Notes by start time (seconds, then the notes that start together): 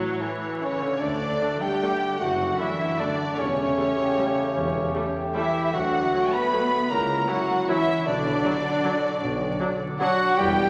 Already playing: A1 A2 E3 F#3 A3 E4 C#5 E5
0.20 E3 E4 A4
0.61 C#3 C#4 E4 A4 C#5
0.81 D3
1.00 D2 D3 A3 D4 D5
1.09 D4
1.20 A3
1.30 F#4
1.40 A3 D4 D5
1.51 A4
1.61 G3 G4 F#5 G5
1.71 D6
1.82 A3 D4 F#5
1.92 D5
2.01 F#4
2.11 A3
2.19 F#1 F#2 F#3 A3 D4 F#4 F#5
2.29 F#3
2.38 A3
2.48 F#4
2.58 E3 A3 D4 E4 D5 E5
2.69 A4
2.79 F#5
2.90 D6
2.98 D3 A3 D4 D5 F#5
3.10 D5
3.19 F#4
3.29 A3
3.37 E1 E2 C#3 E3 A3 C#4 G4 C#5
3.48 E4
3.58 A3
3.67 G4
3.78 G3 A3 A4
3.88 G4
3.98 G5
4.08 A5
4.18 G3 A3 G5
4.28 A4
4.37 G4
4.47 A3
4.56 E1 E2 E3
4.65 E4
4.75 A3
4.85 G4
4.95 G3 A3 A4
5.05 G4
5.15 G5
5.25 A5
5.35 E3 G3 A3 E4 G4 E5 G5
5.44 A4
5.54 G4
5.63 A3
5.72 D2 D3 F#3 A3 F#4 F#5
5.82 A3
5.92 D4
6.02 F#4
6.12 F#3 A3 A4
6.22 D5
6.32 B3 B4 F#5 B5
6.42 A5
6.52 F#3 A3 F#5
6.63 A4
6.72 F#4
6.82 D4
6.90 C#2 C#3 F#3 A#3 E4 A#4 A#5
6.99 C#4
7.09 E4
7.19 F#4
7.28 F#3 E4 F#4 C#5 F#5
7.38 E5
7.48 F#5
7.58 C#6
7.68 E3 F#3 E4 E5 F#5
7.78 C#5
7.87 F#4
7.97 E4
8.06 B1 B2 D3 F#3 D4 D5
8.16 F#3
8.34 F#4
8.44 F#3 D4 D5
8.54 F#4
8.63 F#5
8.73 D6
8.83 F#3 D4 F#5
8.93 D5
9.03 F#4
9.12 D4
9.21 B1 B2
9.31 F#3
9.40 D4
9.49 F#4
9.59 F#3 D4 D5
9.70 F#4
9.80 F#5
9.90 D6
9.99 F#3 D4 F#4 F#5
10.09 D5
10.28 D4
10.37 E1 E2 E3 G3 E4 G4 G5
10.46 E4
10.55 B3